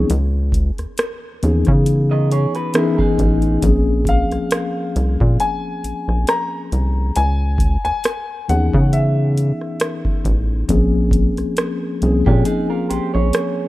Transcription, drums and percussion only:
0.10 closed hi-hat medium
0.52 kick medium
0.52 closed hi-hat medium
0.78 cross-stick soft
0.78 closed hi-hat soft
0.98 cross-stick medium
0.98 closed hi-hat medium
1.43 closed hi-hat medium
1.65 kick medium
1.65 cross-stick soft
1.65 closed hi-hat soft
1.86 closed hi-hat medium
2.31 closed hi-hat medium
2.55 cross-stick soft
2.55 closed hi-hat soft
2.74 cross-stick loud
2.74 closed hi-hat medium
2.99 kick medium
3.19 kick medium
3.19 closed hi-hat soft
3.42 closed hi-hat soft
3.62 kick medium
3.62 closed hi-hat medium
4.05 kick medium
4.05 closed hi-hat medium
4.32 cross-stick soft
4.32 closed hi-hat soft
4.51 cross-stick loud
4.51 closed hi-hat medium
4.96 closed hi-hat medium
5.20 kick medium
5.40 closed hi-hat medium
5.84 closed hi-hat medium
6.09 cross-stick soft
6.27 cross-stick loud
6.27 closed hi-hat medium
6.72 closed hi-hat soft
7.16 closed hi-hat medium
7.58 kick medium
7.58 closed hi-hat medium
7.85 cross-stick soft
7.85 closed hi-hat soft
8.04 cross-stick loud
8.04 closed hi-hat medium
8.49 closed hi-hat medium
8.74 kick medium
8.93 closed hi-hat medium
9.38 closed hi-hat medium
9.61 cross-stick soft
9.80 cross-stick loud
9.80 closed hi-hat medium
10.05 kick medium
10.25 kick medium
10.25 closed hi-hat medium
10.69 kick medium
10.69 closed hi-hat medium
11.11 kick medium
11.11 closed hi-hat medium
11.37 cross-stick soft
11.37 closed hi-hat soft
11.57 cross-stick loud
11.57 closed hi-hat medium
12.02 closed hi-hat medium
12.26 kick medium
12.45 closed hi-hat medium
12.91 closed hi-hat medium
13.15 cross-stick soft
13.33 cross-stick medium
13.33 closed hi-hat medium

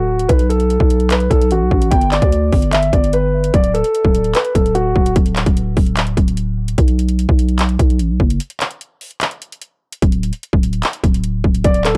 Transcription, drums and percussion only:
0.19 closed hi-hat medium
0.29 kick loud
0.29 closed hi-hat medium
0.39 closed hi-hat medium
0.50 closed hi-hat medium
0.60 closed hi-hat medium
0.70 closed hi-hat medium
0.80 kick medium
0.90 closed hi-hat medium
1.00 closed hi-hat medium
1.10 clap loud
1.10 closed hi-hat medium
1.20 closed hi-hat medium
1.31 kick loud
1.31 closed hi-hat medium
1.42 closed hi-hat medium
1.51 closed hi-hat medium
1.71 kick medium
1.82 closed hi-hat medium
1.91 kick loud
1.91 closed hi-hat medium
2.01 closed hi-hat medium
2.12 clap loud
2.12 closed hi-hat medium
2.22 kick loud
2.22 closed hi-hat medium
2.32 closed hi-hat medium
2.52 kick loud
2.52 open hi-hat medium
2.62 closed hi-hat medium
2.73 clap loud
2.73 closed hi-hat medium
2.83 closed hi-hat medium
2.93 kick loud
2.93 closed hi-hat medium
3.04 closed hi-hat medium
3.13 closed hi-hat medium
3.44 closed hi-hat medium
3.54 kick loud
3.54 closed hi-hat medium
3.64 closed hi-hat medium
3.75 closed hi-hat medium
3.84 closed hi-hat medium
3.95 closed hi-hat medium
4.05 kick loud
4.15 closed hi-hat medium
4.24 closed hi-hat medium
4.35 clap loud
4.35 closed hi-hat medium
4.45 closed hi-hat medium
4.55 kick loud
4.55 closed hi-hat medium
4.66 closed hi-hat medium
4.75 closed hi-hat medium
4.96 kick medium
5.06 closed hi-hat medium
5.16 kick loud
5.16 closed hi-hat medium
5.26 closed hi-hat medium
5.36 clap loud
5.36 closed hi-hat medium
5.46 kick loud
5.46 closed hi-hat medium
5.57 closed hi-hat medium
5.77 kick loud
5.77 open hi-hat medium
5.86 closed hi-hat medium
5.97 clap loud
5.97 closed hi-hat medium
6.07 closed hi-hat medium
6.17 kick loud
6.17 closed hi-hat medium
6.28 closed hi-hat medium
6.37 closed hi-hat medium
6.68 closed hi-hat medium
6.78 kick loud
6.78 closed hi-hat medium
6.88 closed hi-hat medium
6.99 closed hi-hat medium
7.08 closed hi-hat medium
7.19 closed hi-hat medium
7.29 kick loud
7.39 closed hi-hat medium
7.49 closed hi-hat medium
7.59 clap loud
7.59 closed hi-hat medium
7.69 closed hi-hat medium
7.79 kick loud
7.79 closed hi-hat medium
7.90 closed hi-hat medium
7.99 closed hi-hat medium
8.20 kick medium
8.30 closed hi-hat medium
8.40 closed hi-hat medium
8.50 closed hi-hat medium
8.60 clap loud
8.60 closed hi-hat medium
8.71 closed hi-hat medium
8.81 closed hi-hat medium
9.01 open hi-hat medium
9.11 closed hi-hat medium
9.21 clap loud
9.21 closed hi-hat medium
9.31 closed hi-hat medium
9.42 closed hi-hat medium
9.52 closed hi-hat medium
9.62 closed hi-hat medium
9.92 closed hi-hat medium
10.02 kick loud
10.02 closed hi-hat medium
10.12 closed hi-hat medium
10.23 closed hi-hat medium
10.33 closed hi-hat medium
10.43 closed hi-hat medium
10.53 kick loud
10.63 closed hi-hat medium
10.73 closed hi-hat medium
10.83 clap loud
10.83 closed hi-hat medium
10.93 closed hi-hat medium
11.04 kick loud
11.04 closed hi-hat medium
11.14 closed hi-hat medium
11.24 closed hi-hat medium
11.44 kick medium
11.55 closed hi-hat medium
11.64 kick loud
11.64 closed hi-hat medium
11.74 closed hi-hat medium
11.85 clap loud
11.85 closed hi-hat medium

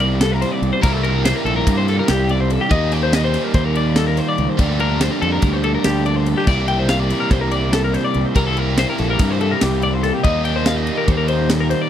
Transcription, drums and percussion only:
0.21 snare loud
0.21 ride loud
0.42 snare soft
0.42 ride medium
0.63 ride medium
0.83 kick loud
0.83 ride loud
1.04 ride medium
1.25 snare loud
1.25 ride loud
1.46 ride medium
1.67 kick loud
1.67 ride loud
1.88 snare soft
1.88 ride medium
2.08 snare loud
2.08 ride loud
2.29 ride medium
2.50 ride medium
2.71 kick loud
2.71 ride medium
2.92 snare soft
2.92 ride medium
3.13 snare loud
3.13 ride medium
3.34 snare soft
3.34 ride medium
3.54 kick loud
3.54 snare soft
3.54 ride medium
3.75 ride medium
3.96 snare loud
3.96 ride loud
4.17 snare soft
4.17 ride medium
4.38 ride medium
4.59 kick loud
4.59 ride loud
4.80 ride medium
5.01 snare loud
5.01 ride loud
5.22 ride medium
5.42 kick loud
5.42 ride loud
5.64 ride medium
5.84 snare loud
5.84 ride loud
6.06 ride medium
6.26 ride medium
6.47 kick loud
6.47 crash loud
6.68 ride medium
6.89 snare loud
6.89 ride medium
7.10 snare soft
7.10 ride medium
7.31 kick loud
7.31 snare soft
7.31 ride loud
7.51 ride medium
7.73 snare loud
7.73 ride loud
7.94 snare soft
7.94 ride medium
8.14 ride medium
8.36 kick loud
8.36 ride loud
8.57 ride medium
8.78 snare loud
8.78 ride loud
8.98 snare soft
8.98 ride medium
9.19 kick loud
9.19 ride loud
9.41 ride medium
9.61 snare loud
9.61 ride loud
9.82 ride medium
10.04 snare soft
10.04 ride medium
10.24 kick loud
10.24 ride loud
10.45 ride medium
10.66 snare loud
10.66 ride medium
10.87 ride medium
11.08 kick loud
11.08 ride loud
11.28 ride medium
11.50 snare loud
11.50 ride loud
11.71 snare soft
11.71 ride medium

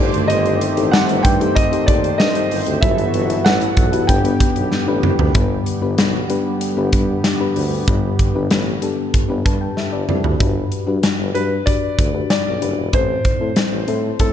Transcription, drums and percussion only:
0.14 closed hi-hat soft
0.30 closed hi-hat medium
0.46 closed hi-hat soft
0.61 closed hi-hat medium
0.77 closed hi-hat medium
0.93 snare loud
0.93 tambourine medium
1.09 closed hi-hat soft
1.25 kick medium
1.25 closed hi-hat medium
1.41 closed hi-hat medium
1.56 kick medium
1.56 closed hi-hat medium
1.73 closed hi-hat medium
1.88 kick loud
1.88 closed hi-hat medium
2.04 closed hi-hat soft
2.20 snare loud
2.20 tambourine medium
2.35 closed hi-hat medium
2.51 open hi-hat medium
2.67 closed hi-hat soft
2.83 kick loud
2.83 closed hi-hat medium
2.98 closed hi-hat soft
3.14 closed hi-hat medium
3.30 closed hi-hat medium
3.46 snare loud
3.46 tambourine medium
3.61 closed hi-hat soft
3.77 kick medium
3.77 closed hi-hat medium
3.93 closed hi-hat medium
4.09 kick medium
4.09 closed hi-hat medium
4.25 closed hi-hat medium
4.40 kick medium
4.40 closed hi-hat medium
4.56 closed hi-hat soft
4.72 snare medium
5.03 mid tom medium
5.19 floor tom medium
5.35 kick loud
5.35 closed hi-hat medium
5.66 closed hi-hat medium
5.98 snare loud
5.98 closed hi-hat medium
6.30 closed hi-hat medium
6.61 closed hi-hat medium
6.93 kick medium
6.93 closed hi-hat medium
7.24 snare medium
7.24 closed hi-hat medium
7.56 open hi-hat medium
7.88 kick loud
7.88 closed hi-hat medium
8.19 kick medium
8.19 closed hi-hat medium
8.51 snare loud
8.51 closed hi-hat medium
8.82 closed hi-hat medium
9.14 kick medium
9.14 closed hi-hat medium
9.46 kick medium
9.46 closed hi-hat medium
9.77 snare soft
10.09 mid tom medium
10.24 floor tom medium
10.40 kick loud
10.40 closed hi-hat medium
10.72 closed hi-hat medium
11.03 snare loud
11.03 closed hi-hat medium
11.35 closed hi-hat medium
11.67 kick medium
11.67 closed hi-hat medium
11.99 kick medium
11.99 closed hi-hat medium
12.30 snare medium
12.30 closed hi-hat medium
12.62 closed hi-hat medium
12.93 kick loud
12.93 closed hi-hat medium
13.25 kick medium
13.25 closed hi-hat medium
13.56 snare loud
13.56 closed hi-hat medium
13.88 closed hi-hat medium
14.19 kick medium
14.19 closed hi-hat medium

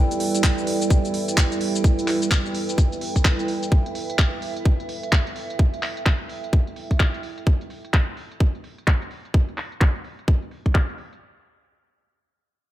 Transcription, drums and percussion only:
0.11 closed hi-hat medium
0.11 shaker soft
0.20 open hi-hat loud
0.35 closed hi-hat medium
0.35 shaker medium
0.44 kick loud
0.44 clap loud
0.44 shaker medium
0.58 shaker soft
0.67 open hi-hat loud
0.81 closed hi-hat medium
0.81 shaker medium
0.90 kick loud
0.90 shaker medium
1.05 closed hi-hat soft
1.05 shaker soft
1.14 open hi-hat loud
1.28 closed hi-hat medium
1.28 shaker medium
1.37 kick loud
1.37 clap loud
1.37 shaker medium
1.52 closed hi-hat soft
1.52 shaker soft
1.61 open hi-hat loud
1.75 closed hi-hat medium
1.75 shaker medium
1.84 kick loud
1.84 shaker soft
1.99 closed hi-hat medium
1.99 shaker soft
2.08 clap medium
2.08 open hi-hat loud
2.22 closed hi-hat medium
2.22 shaker medium
2.31 kick loud
2.31 clap loud
2.31 shaker medium
2.46 shaker soft
2.55 open hi-hat loud
2.69 closed hi-hat medium
2.69 shaker medium
2.78 kick loud
2.78 shaker medium
2.92 closed hi-hat soft
2.92 shaker soft
3.01 open hi-hat loud
3.16 kick medium
3.16 closed hi-hat medium
3.16 shaker medium
3.25 kick loud
3.25 clap loud
3.25 shaker medium
3.39 closed hi-hat soft
3.39 shaker soft
3.48 open hi-hat loud
3.63 closed hi-hat medium
3.63 shaker medium
3.72 kick loud
3.86 closed hi-hat soft
3.95 open hi-hat loud
4.10 closed hi-hat medium
4.19 kick loud
4.19 clap loud
4.42 open hi-hat loud
4.57 closed hi-hat medium
4.65 kick loud
4.80 closed hi-hat soft
4.89 open hi-hat loud
5.03 closed hi-hat medium
5.12 kick loud
5.12 clap loud
5.27 closed hi-hat soft
5.36 open hi-hat loud
5.50 closed hi-hat medium
5.59 kick loud
5.74 closed hi-hat medium
5.83 clap medium
5.83 open hi-hat medium
5.97 closed hi-hat medium
6.06 kick loud
6.06 clap loud
6.29 open hi-hat loud
6.44 closed hi-hat medium
6.53 kick loud
6.67 closed hi-hat soft
6.76 open hi-hat medium
6.91 kick medium
6.91 closed hi-hat medium
7.00 kick loud
7.00 clap loud
7.14 closed hi-hat soft
7.23 open hi-hat medium
7.38 closed hi-hat medium
7.47 kick loud
7.61 closed hi-hat medium
7.70 open hi-hat medium
7.85 closed hi-hat medium
7.94 kick loud
7.94 clap loud
8.17 open hi-hat medium
8.32 closed hi-hat medium
8.40 kick loud
8.55 closed hi-hat soft
8.64 open hi-hat medium
8.78 closed hi-hat medium
8.87 kick loud
8.87 clap loud
9.02 closed hi-hat medium
9.11 open hi-hat medium
9.25 closed hi-hat medium
9.34 kick loud
9.49 closed hi-hat medium
9.58 clap medium
9.58 open hi-hat loud
9.72 closed hi-hat medium
9.81 kick loud
9.81 clap loud
9.96 closed hi-hat soft
10.04 open hi-hat medium
10.19 closed hi-hat medium
10.28 kick loud
10.42 closed hi-hat soft
10.51 open hi-hat medium
10.66 kick medium
10.66 closed hi-hat medium
10.75 kick loud
10.75 clap loud
10.89 closed hi-hat soft
10.98 open hi-hat medium
11.13 closed hi-hat medium

